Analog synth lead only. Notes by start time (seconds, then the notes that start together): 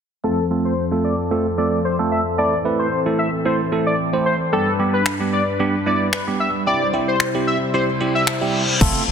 0.24 A4
0.65 C5
1.04 D5
1.58 D5
1.85 C5
2.12 E5
2.38 D5
2.79 C5
3.19 E5
3.45 C5
3.86 D5
4.26 C5
4.53 A4
4.93 B4
5.33 D5
5.86 D5
6.13 B4
6.40 E5
6.67 D5
7.08 C5
7.47 E5
7.74 C5
8.15 E5